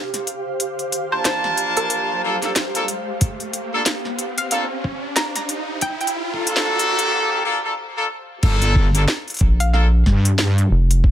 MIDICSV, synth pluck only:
0, 0, Header, 1, 2, 480
1, 0, Start_track
1, 0, Key_signature, -2, "minor"
1, 0, Tempo, 652174
1, 445, Time_signature, 4, 2, 24, 8
1, 8177, End_track
2, 0, Start_track
2, 0, Title_t, "Synth pluck"
2, 0, Program_c, 0, 84
2, 826, Note_on_c, 0, 72, 88
2, 890, Note_off_c, 0, 72, 0
2, 927, Note_on_c, 0, 72, 77
2, 1016, Note_off_c, 0, 72, 0
2, 1303, Note_on_c, 0, 70, 91
2, 1644, Note_off_c, 0, 70, 0
2, 3224, Note_on_c, 0, 77, 90
2, 3289, Note_off_c, 0, 77, 0
2, 3327, Note_on_c, 0, 77, 75
2, 3417, Note_off_c, 0, 77, 0
2, 3802, Note_on_c, 0, 82, 92
2, 3894, Note_off_c, 0, 82, 0
2, 3947, Note_on_c, 0, 82, 78
2, 4010, Note_off_c, 0, 82, 0
2, 4285, Note_on_c, 0, 79, 92
2, 4376, Note_off_c, 0, 79, 0
2, 4424, Note_on_c, 0, 79, 78
2, 4489, Note_off_c, 0, 79, 0
2, 7067, Note_on_c, 0, 77, 92
2, 7130, Note_off_c, 0, 77, 0
2, 7165, Note_on_c, 0, 77, 77
2, 7256, Note_off_c, 0, 77, 0
2, 8177, End_track
0, 0, End_of_file